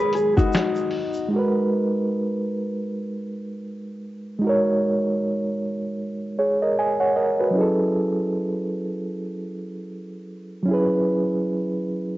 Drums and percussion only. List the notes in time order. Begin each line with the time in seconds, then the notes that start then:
0.13 closed hi-hat, shaker
0.38 kick, closed hi-hat, shaker
0.53 finger snap, snare, shaker
0.57 closed hi-hat
0.76 shaker
0.91 open hi-hat
1.14 shaker